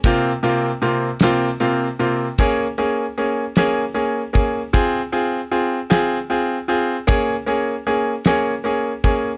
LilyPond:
<<
  \new Staff \with { instrumentName = "Grand piano" } { \time 6/8 \key bes \minor \tempo 4. = 51 <c bes c' f'>8 <c bes c' f'>8 <c bes c' f'>8 <c bes c' f'>8 <c bes c' f'>8 <c bes c' f'>8 | <bes des' aes'>8 <bes des' aes'>8 <bes des' aes'>8 <bes des' aes'>8 <bes des' aes'>8 <bes des' aes'>8 | <c' f' aes'>8 <c' f' aes'>8 <c' f' aes'>8 <c' f' aes'>8 <c' f' aes'>8 <c' f' aes'>8 | <bes des' aes'>8 <bes des' aes'>8 <bes des' aes'>8 <bes des' aes'>8 <bes des' aes'>8 <bes des' aes'>8 | }
  \new DrumStaff \with { instrumentName = "Drums" } \drummode { \time 6/8 <bd cymr>8 cymr8 cymr8 <cymr sn>8 cymr8 cymr8 | <bd cymr>8 cymr8 cymr8 <cymr sn>8 cymr8 <bd cymr>8 | <bd cymr>8 cymr8 cymr8 <cymr sn>8 cymr8 cymr8 | <bd cymr>8 cymr8 cymr8 <cymr sn>8 cymr8 <bd cymr>8 | }
>>